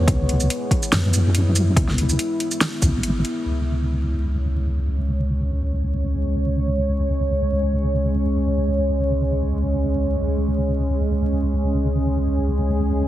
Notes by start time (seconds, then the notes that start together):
Already playing: G#3 B3
0.08 C#2 E4, kick, closed hi-hat
0.29 closed hi-hat
0.40 shaker
0.50 closed hi-hat
0.71 kick, closed hi-hat
0.83 shaker
0.92 F#2, snare, closed hi-hat
1.14 closed hi-hat, shaker
1.35 closed hi-hat
1.56 closed hi-hat, shaker
1.77 C#2, kick, closed hi-hat
1.88 snare
1.98 closed hi-hat
2.09 shaker
2.19 closed hi-hat
2.40 closed hi-hat
2.51 shaker
2.61 snare, closed hi-hat
2.82 D2, kick, closed hi-hat, shaker
2.93 G#1
3.03 closed hi-hat
3.25 closed hi-hat
3.46 C#2 G#3 C#4 C#5
10.22 C#2 G#4